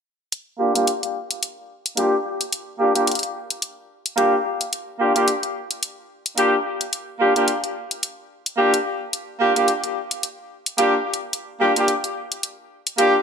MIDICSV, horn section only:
0, 0, Header, 1, 2, 480
1, 0, Start_track
1, 0, Key_signature, -2, "minor"
1, 0, Tempo, 550459
1, 282, Time_signature, 4, 2, 24, 8
1, 11531, End_track
2, 0, Start_track
2, 0, Title_t, "Horn section"
2, 0, Program_c, 0, 61
2, 518, Note_on_c, 0, 58, 82
2, 519, Note_on_c, 0, 62, 75
2, 519, Note_on_c, 0, 65, 75
2, 519, Note_on_c, 0, 67, 90
2, 636, Note_off_c, 0, 58, 0
2, 636, Note_off_c, 0, 62, 0
2, 636, Note_off_c, 0, 67, 0
2, 637, Note_off_c, 0, 65, 0
2, 654, Note_on_c, 0, 67, 84
2, 655, Note_on_c, 0, 58, 77
2, 655, Note_on_c, 0, 62, 70
2, 655, Note_on_c, 0, 65, 69
2, 786, Note_off_c, 0, 58, 0
2, 786, Note_off_c, 0, 62, 0
2, 786, Note_off_c, 0, 65, 0
2, 786, Note_off_c, 0, 67, 0
2, 1717, Note_on_c, 0, 67, 94
2, 1718, Note_on_c, 0, 58, 85
2, 1718, Note_on_c, 0, 62, 79
2, 1718, Note_on_c, 0, 65, 80
2, 1875, Note_off_c, 0, 67, 0
2, 1876, Note_off_c, 0, 58, 0
2, 1876, Note_off_c, 0, 62, 0
2, 1876, Note_off_c, 0, 65, 0
2, 2438, Note_on_c, 0, 58, 82
2, 2438, Note_on_c, 0, 67, 91
2, 2439, Note_on_c, 0, 62, 77
2, 2439, Note_on_c, 0, 65, 75
2, 2556, Note_off_c, 0, 58, 0
2, 2556, Note_off_c, 0, 62, 0
2, 2556, Note_off_c, 0, 65, 0
2, 2556, Note_off_c, 0, 67, 0
2, 2575, Note_on_c, 0, 58, 76
2, 2575, Note_on_c, 0, 62, 70
2, 2575, Note_on_c, 0, 65, 69
2, 2575, Note_on_c, 0, 67, 85
2, 2706, Note_off_c, 0, 58, 0
2, 2706, Note_off_c, 0, 62, 0
2, 2706, Note_off_c, 0, 65, 0
2, 2706, Note_off_c, 0, 67, 0
2, 3637, Note_on_c, 0, 58, 89
2, 3637, Note_on_c, 0, 62, 79
2, 3637, Note_on_c, 0, 65, 82
2, 3637, Note_on_c, 0, 67, 96
2, 3795, Note_off_c, 0, 58, 0
2, 3795, Note_off_c, 0, 65, 0
2, 3796, Note_off_c, 0, 62, 0
2, 3796, Note_off_c, 0, 67, 0
2, 4357, Note_on_c, 0, 58, 84
2, 4357, Note_on_c, 0, 65, 80
2, 4357, Note_on_c, 0, 67, 93
2, 4358, Note_on_c, 0, 62, 80
2, 4475, Note_off_c, 0, 58, 0
2, 4475, Note_off_c, 0, 65, 0
2, 4475, Note_off_c, 0, 67, 0
2, 4476, Note_off_c, 0, 62, 0
2, 4493, Note_on_c, 0, 62, 71
2, 4494, Note_on_c, 0, 58, 78
2, 4494, Note_on_c, 0, 67, 89
2, 4495, Note_on_c, 0, 65, 72
2, 4625, Note_off_c, 0, 58, 0
2, 4625, Note_off_c, 0, 62, 0
2, 4625, Note_off_c, 0, 67, 0
2, 4626, Note_off_c, 0, 65, 0
2, 5558, Note_on_c, 0, 62, 79
2, 5559, Note_on_c, 0, 58, 88
2, 5559, Note_on_c, 0, 67, 97
2, 5560, Note_on_c, 0, 65, 80
2, 5716, Note_off_c, 0, 62, 0
2, 5717, Note_off_c, 0, 58, 0
2, 5717, Note_off_c, 0, 65, 0
2, 5717, Note_off_c, 0, 67, 0
2, 6276, Note_on_c, 0, 65, 77
2, 6277, Note_on_c, 0, 62, 76
2, 6277, Note_on_c, 0, 67, 93
2, 6278, Note_on_c, 0, 58, 84
2, 6395, Note_off_c, 0, 65, 0
2, 6395, Note_off_c, 0, 67, 0
2, 6396, Note_off_c, 0, 58, 0
2, 6396, Note_off_c, 0, 62, 0
2, 6413, Note_on_c, 0, 67, 85
2, 6414, Note_on_c, 0, 58, 79
2, 6414, Note_on_c, 0, 62, 73
2, 6414, Note_on_c, 0, 65, 73
2, 6545, Note_off_c, 0, 58, 0
2, 6545, Note_off_c, 0, 65, 0
2, 6545, Note_off_c, 0, 67, 0
2, 6546, Note_off_c, 0, 62, 0
2, 7478, Note_on_c, 0, 58, 86
2, 7478, Note_on_c, 0, 62, 80
2, 7479, Note_on_c, 0, 65, 78
2, 7479, Note_on_c, 0, 67, 93
2, 7636, Note_off_c, 0, 58, 0
2, 7636, Note_off_c, 0, 62, 0
2, 7636, Note_off_c, 0, 65, 0
2, 7636, Note_off_c, 0, 67, 0
2, 8199, Note_on_c, 0, 62, 77
2, 8199, Note_on_c, 0, 65, 78
2, 8199, Note_on_c, 0, 67, 91
2, 8200, Note_on_c, 0, 58, 84
2, 8316, Note_off_c, 0, 62, 0
2, 8316, Note_off_c, 0, 65, 0
2, 8316, Note_off_c, 0, 67, 0
2, 8317, Note_off_c, 0, 58, 0
2, 8335, Note_on_c, 0, 62, 70
2, 8335, Note_on_c, 0, 65, 73
2, 8336, Note_on_c, 0, 58, 77
2, 8336, Note_on_c, 0, 67, 85
2, 8466, Note_off_c, 0, 58, 0
2, 8466, Note_off_c, 0, 62, 0
2, 8466, Note_off_c, 0, 65, 0
2, 8466, Note_off_c, 0, 67, 0
2, 9399, Note_on_c, 0, 58, 87
2, 9399, Note_on_c, 0, 67, 96
2, 9400, Note_on_c, 0, 62, 82
2, 9400, Note_on_c, 0, 65, 80
2, 9557, Note_off_c, 0, 58, 0
2, 9557, Note_off_c, 0, 62, 0
2, 9557, Note_off_c, 0, 65, 0
2, 9557, Note_off_c, 0, 67, 0
2, 10121, Note_on_c, 0, 62, 81
2, 10121, Note_on_c, 0, 65, 78
2, 10121, Note_on_c, 0, 67, 98
2, 10122, Note_on_c, 0, 58, 86
2, 10237, Note_off_c, 0, 62, 0
2, 10237, Note_off_c, 0, 65, 0
2, 10237, Note_off_c, 0, 67, 0
2, 10238, Note_off_c, 0, 58, 0
2, 10258, Note_on_c, 0, 58, 79
2, 10258, Note_on_c, 0, 62, 73
2, 10258, Note_on_c, 0, 65, 75
2, 10259, Note_on_c, 0, 67, 88
2, 10387, Note_off_c, 0, 58, 0
2, 10387, Note_off_c, 0, 62, 0
2, 10387, Note_off_c, 0, 65, 0
2, 10388, Note_off_c, 0, 67, 0
2, 11322, Note_on_c, 0, 58, 89
2, 11322, Note_on_c, 0, 62, 82
2, 11322, Note_on_c, 0, 65, 81
2, 11322, Note_on_c, 0, 67, 102
2, 11478, Note_off_c, 0, 58, 0
2, 11478, Note_off_c, 0, 62, 0
2, 11478, Note_off_c, 0, 65, 0
2, 11478, Note_off_c, 0, 67, 0
2, 11531, End_track
0, 0, End_of_file